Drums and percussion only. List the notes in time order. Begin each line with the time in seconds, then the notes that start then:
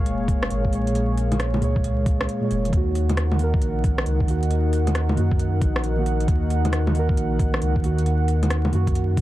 0.06 closed hi-hat
0.28 kick, open hi-hat
0.43 cross-stick
0.50 closed hi-hat
0.65 kick
0.73 open hi-hat
0.87 closed hi-hat
0.95 closed hi-hat
1.18 open hi-hat
1.32 closed hi-hat, low bongo
1.40 cross-stick, closed hi-hat
1.54 low bongo
1.62 open hi-hat
1.76 kick
1.84 closed hi-hat
2.06 kick, open hi-hat
2.21 cross-stick
2.29 closed hi-hat
2.51 open hi-hat
2.65 closed hi-hat
2.73 kick, closed hi-hat
2.95 open hi-hat
3.09 closed hi-hat, low bongo
3.17 cross-stick, closed hi-hat
3.32 low bongo
3.39 open hi-hat
3.54 kick
3.62 closed hi-hat
3.84 kick, open hi-hat
3.98 cross-stick
4.06 closed hi-hat
4.20 kick
4.28 open hi-hat
4.43 closed hi-hat
4.51 closed hi-hat
4.73 open hi-hat
4.87 closed hi-hat, low bongo
4.95 cross-stick, closed hi-hat
5.09 low bongo
5.17 open hi-hat
5.31 kick
5.39 closed hi-hat
5.61 kick, open hi-hat
5.76 cross-stick
5.84 closed hi-hat
6.06 open hi-hat
6.20 closed hi-hat
6.28 kick, closed hi-hat
6.50 open hi-hat
6.65 closed hi-hat, low bongo
6.73 cross-stick, closed hi-hat
6.87 low bongo
6.95 open hi-hat
7.09 kick
7.17 closed hi-hat
7.39 kick, open hi-hat
7.54 cross-stick
7.62 closed hi-hat
7.76 kick
7.84 open hi-hat
7.98 closed hi-hat
8.06 closed hi-hat
8.28 open hi-hat
8.43 closed hi-hat, low bongo
8.50 cross-stick, closed hi-hat
8.65 low bongo
8.73 open hi-hat
8.87 kick, closed hi-hat
8.95 closed hi-hat
9.17 kick, open hi-hat